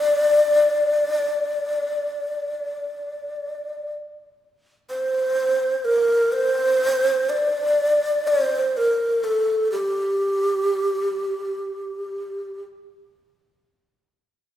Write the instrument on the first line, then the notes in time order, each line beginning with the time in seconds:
ney
Already playing: D5
4.90 C5
5.85 A#4
6.33 C5
7.30 D5
8.27 C5
8.77 A#4
9.24 A4
9.72 G4